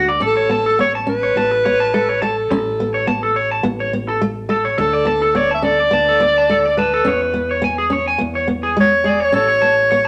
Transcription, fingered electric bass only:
0, 0, Header, 1, 2, 480
1, 0, Start_track
1, 0, Key_signature, 3, "major"
1, 0, Tempo, 569260
1, 185, Time_signature, 4, 2, 24, 8
1, 8499, End_track
2, 0, Start_track
2, 0, Title_t, "Fingered electric bass"
2, 0, Program_c, 0, 33
2, 0, Note_on_c, 0, 38, 83
2, 154, Note_off_c, 0, 38, 0
2, 191, Note_on_c, 0, 33, 93
2, 1117, Note_off_c, 0, 33, 0
2, 1144, Note_on_c, 0, 33, 83
2, 2074, Note_off_c, 0, 33, 0
2, 2113, Note_on_c, 0, 33, 96
2, 3038, Note_off_c, 0, 33, 0
2, 3073, Note_on_c, 0, 33, 86
2, 3997, Note_off_c, 0, 33, 0
2, 4031, Note_on_c, 0, 38, 100
2, 4955, Note_off_c, 0, 38, 0
2, 4994, Note_on_c, 0, 38, 81
2, 5916, Note_off_c, 0, 38, 0
2, 5955, Note_on_c, 0, 40, 93
2, 6876, Note_off_c, 0, 40, 0
2, 6925, Note_on_c, 0, 40, 88
2, 7841, Note_off_c, 0, 40, 0
2, 7874, Note_on_c, 0, 33, 97
2, 8499, Note_off_c, 0, 33, 0
2, 8499, End_track
0, 0, End_of_file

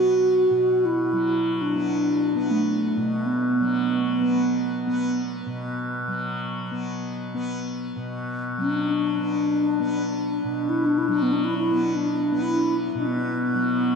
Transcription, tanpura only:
0, 0, Header, 1, 2, 480
1, 0, Start_track
1, 0, Key_signature, 2, "minor"
1, 0, Tempo, 500000
1, 13395, End_track
2, 0, Start_track
2, 0, Title_t, "Tanpura"
2, 0, Program_c, 0, 104
2, 0, Note_on_c, 0, 47, 46
2, 0, Note_on_c, 0, 54, 46
2, 0, Note_on_c, 0, 59, 46
2, 481, Note_off_c, 0, 47, 0
2, 485, Note_on_c, 0, 47, 45
2, 1075, Note_off_c, 0, 54, 0
2, 1079, Note_on_c, 0, 54, 48
2, 1674, Note_off_c, 0, 59, 0
2, 1674, Note_on_c, 0, 59, 50
2, 2259, Note_off_c, 0, 59, 0
2, 2259, Note_on_c, 0, 59, 45
2, 2846, Note_off_c, 0, 47, 0
2, 2850, Note_on_c, 0, 47, 46
2, 3456, Note_off_c, 0, 54, 0
2, 3460, Note_on_c, 0, 54, 46
2, 4044, Note_off_c, 0, 59, 0
2, 4044, Note_on_c, 0, 59, 45
2, 4674, Note_off_c, 0, 59, 0
2, 4674, Note_on_c, 0, 59, 49
2, 5241, Note_off_c, 0, 47, 0
2, 5244, Note_on_c, 0, 47, 44
2, 5827, Note_off_c, 0, 54, 0
2, 5831, Note_on_c, 0, 54, 40
2, 6444, Note_off_c, 0, 59, 0
2, 6444, Note_on_c, 0, 59, 46
2, 7048, Note_off_c, 0, 59, 0
2, 7048, Note_on_c, 0, 59, 51
2, 7639, Note_off_c, 0, 47, 0
2, 7643, Note_on_c, 0, 47, 42
2, 8229, Note_off_c, 0, 54, 0
2, 8233, Note_on_c, 0, 54, 54
2, 8824, Note_off_c, 0, 59, 0
2, 8824, Note_on_c, 0, 59, 42
2, 9404, Note_off_c, 0, 59, 0
2, 9404, Note_on_c, 0, 59, 53
2, 10022, Note_off_c, 0, 47, 0
2, 10026, Note_on_c, 0, 47, 44
2, 10630, Note_off_c, 0, 54, 0
2, 10634, Note_on_c, 0, 54, 50
2, 11237, Note_off_c, 0, 59, 0
2, 11237, Note_on_c, 0, 59, 52
2, 11825, Note_off_c, 0, 59, 0
2, 11825, Note_on_c, 0, 59, 54
2, 12427, Note_off_c, 0, 47, 0
2, 12430, Note_on_c, 0, 47, 52
2, 12996, Note_off_c, 0, 54, 0
2, 13000, Note_on_c, 0, 54, 44
2, 13395, Note_off_c, 0, 47, 0
2, 13395, Note_off_c, 0, 54, 0
2, 13395, Note_off_c, 0, 59, 0
2, 13395, End_track
0, 0, End_of_file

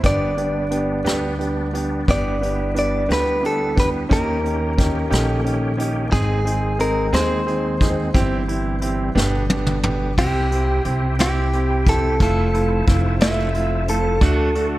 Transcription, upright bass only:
0, 0, Header, 1, 2, 480
1, 0, Start_track
1, 0, Key_signature, 0, "major"
1, 0, Tempo, 674916
1, 29, Time_signature, 6, 3, 24, 8
1, 10516, End_track
2, 0, Start_track
2, 0, Title_t, "Upright bass"
2, 0, Program_c, 0, 32
2, 29, Note_on_c, 0, 31, 85
2, 724, Note_off_c, 0, 31, 0
2, 748, Note_on_c, 0, 38, 73
2, 1449, Note_off_c, 0, 38, 0
2, 1481, Note_on_c, 0, 31, 86
2, 2176, Note_off_c, 0, 31, 0
2, 2203, Note_on_c, 0, 38, 73
2, 2894, Note_off_c, 0, 38, 0
2, 2923, Note_on_c, 0, 39, 83
2, 3611, Note_off_c, 0, 39, 0
2, 3638, Note_on_c, 0, 34, 83
2, 4327, Note_off_c, 0, 34, 0
2, 4356, Note_on_c, 0, 32, 105
2, 5045, Note_off_c, 0, 32, 0
2, 5069, Note_on_c, 0, 39, 83
2, 5762, Note_off_c, 0, 39, 0
2, 5794, Note_on_c, 0, 31, 92
2, 6487, Note_off_c, 0, 31, 0
2, 6510, Note_on_c, 0, 31, 86
2, 7208, Note_off_c, 0, 31, 0
2, 7237, Note_on_c, 0, 36, 92
2, 7690, Note_off_c, 0, 36, 0
2, 7718, Note_on_c, 0, 36, 86
2, 8650, Note_off_c, 0, 36, 0
2, 8679, Note_on_c, 0, 29, 114
2, 9129, Note_off_c, 0, 29, 0
2, 9156, Note_on_c, 0, 29, 99
2, 10081, Note_off_c, 0, 29, 0
2, 10109, Note_on_c, 0, 38, 109
2, 10516, Note_off_c, 0, 38, 0
2, 10516, End_track
0, 0, End_of_file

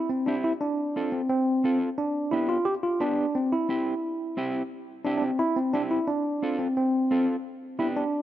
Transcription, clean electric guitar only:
0, 0, Header, 1, 2, 480
1, 0, Start_track
1, 0, Key_signature, 0, "major"
1, 0, Tempo, 341491
1, 880, Time_signature, 4, 2, 24, 8
1, 11554, End_track
2, 0, Start_track
2, 0, Title_t, "Clean electric guitar"
2, 0, Program_c, 0, 27
2, 383, Note_on_c, 0, 60, 70
2, 390, Note_on_c, 0, 64, 62
2, 397, Note_on_c, 0, 67, 74
2, 728, Note_off_c, 0, 60, 0
2, 731, Note_off_c, 0, 64, 0
2, 734, Note_off_c, 0, 67, 0
2, 1351, Note_on_c, 0, 60, 70
2, 1357, Note_on_c, 0, 65, 64
2, 1361, Note_on_c, 0, 69, 79
2, 1691, Note_off_c, 0, 60, 0
2, 1694, Note_off_c, 0, 65, 0
2, 1696, Note_off_c, 0, 69, 0
2, 2305, Note_on_c, 0, 60, 66
2, 2317, Note_on_c, 0, 65, 67
2, 2317, Note_on_c, 0, 69, 76
2, 2649, Note_off_c, 0, 60, 0
2, 2652, Note_off_c, 0, 65, 0
2, 2654, Note_off_c, 0, 69, 0
2, 3265, Note_on_c, 0, 59, 69
2, 3273, Note_on_c, 0, 62, 61
2, 3275, Note_on_c, 0, 67, 73
2, 3608, Note_off_c, 0, 59, 0
2, 3611, Note_off_c, 0, 62, 0
2, 3613, Note_off_c, 0, 67, 0
2, 4220, Note_on_c, 0, 59, 69
2, 4225, Note_on_c, 0, 62, 66
2, 4231, Note_on_c, 0, 67, 78
2, 4565, Note_off_c, 0, 59, 0
2, 4568, Note_off_c, 0, 62, 0
2, 4571, Note_off_c, 0, 67, 0
2, 5184, Note_on_c, 0, 60, 70
2, 5191, Note_on_c, 0, 64, 63
2, 5198, Note_on_c, 0, 67, 78
2, 5527, Note_off_c, 0, 60, 0
2, 5531, Note_off_c, 0, 64, 0
2, 5533, Note_off_c, 0, 67, 0
2, 6143, Note_on_c, 0, 60, 81
2, 6149, Note_on_c, 0, 64, 74
2, 6156, Note_on_c, 0, 67, 87
2, 6487, Note_off_c, 0, 60, 0
2, 6490, Note_off_c, 0, 64, 0
2, 6492, Note_off_c, 0, 67, 0
2, 7104, Note_on_c, 0, 60, 70
2, 7110, Note_on_c, 0, 64, 63
2, 7119, Note_on_c, 0, 67, 77
2, 7448, Note_off_c, 0, 60, 0
2, 7451, Note_off_c, 0, 64, 0
2, 7453, Note_off_c, 0, 67, 0
2, 8067, Note_on_c, 0, 60, 71
2, 8074, Note_on_c, 0, 64, 69
2, 8080, Note_on_c, 0, 67, 73
2, 8409, Note_off_c, 0, 60, 0
2, 8412, Note_off_c, 0, 64, 0
2, 8416, Note_off_c, 0, 67, 0
2, 9030, Note_on_c, 0, 60, 69
2, 9036, Note_on_c, 0, 65, 66
2, 9042, Note_on_c, 0, 69, 74
2, 9371, Note_off_c, 0, 60, 0
2, 9375, Note_off_c, 0, 65, 0
2, 9376, Note_off_c, 0, 69, 0
2, 9991, Note_on_c, 0, 60, 71
2, 9996, Note_on_c, 0, 65, 62
2, 10003, Note_on_c, 0, 69, 77
2, 10332, Note_off_c, 0, 60, 0
2, 10335, Note_off_c, 0, 65, 0
2, 10338, Note_off_c, 0, 69, 0
2, 10946, Note_on_c, 0, 59, 67
2, 10954, Note_on_c, 0, 62, 63
2, 10957, Note_on_c, 0, 67, 78
2, 11291, Note_off_c, 0, 59, 0
2, 11293, Note_off_c, 0, 62, 0
2, 11296, Note_off_c, 0, 67, 0
2, 11554, End_track
0, 0, End_of_file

